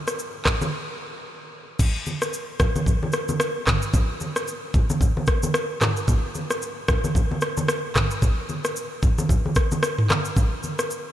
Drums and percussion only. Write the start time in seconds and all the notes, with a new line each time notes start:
0.07 cross-stick, shaker
0.19 shaker
0.45 kick, cross-stick, clap, low conga, shaker
0.61 high conga, shaker
1.79 kick, crash, low conga, shaker
2.06 high conga, shaker
2.22 cross-stick, shaker
2.33 shaker
2.60 kick, cross-stick, low conga, shaker
2.76 high conga, shaker
2.86 kick, low conga, shaker
3.03 high conga
3.12 cross-stick, shaker
3.29 high conga, shaker
3.40 cross-stick, shaker
3.67 kick, cross-stick, clap, mid tom, high conga, shaker
3.82 shaker
3.94 kick, low conga, shaker
4.20 high conga, shaker
4.36 cross-stick, shaker
4.48 shaker
4.74 kick, low conga, shaker
4.90 high conga, shaker
5.01 kick, low conga, shaker
5.17 high conga
5.27 kick, cross-stick, shaker
5.43 high conga, shaker
5.54 cross-stick, shaker
5.81 cross-stick, clap, mid tom, high conga, shaker
5.96 shaker
6.08 kick, low conga, shaker
6.35 high conga, shaker
6.50 cross-stick, shaker
6.62 shaker
6.88 kick, cross-stick, low conga, shaker
7.04 high conga, shaker
7.15 kick, low conga, shaker
7.31 high conga
7.41 cross-stick, shaker
7.57 high conga, shaker
7.68 cross-stick, shaker
7.95 kick, cross-stick, clap, mid tom, high conga, shaker
8.11 shaker
8.22 kick, low conga, shaker
8.49 high conga, shaker
8.65 cross-stick, shaker
8.76 shaker
9.03 kick, low conga, shaker
9.18 high conga, shaker
9.29 kick, low conga, shaker
9.46 high conga
9.55 kick, cross-stick, shaker
9.71 high conga, shaker
9.83 cross-stick, shaker
9.98 mid tom
10.10 cross-stick, clap, high conga, shaker
10.25 shaker
10.36 kick, low conga, shaker
10.63 high conga, shaker
10.79 cross-stick, shaker
10.91 shaker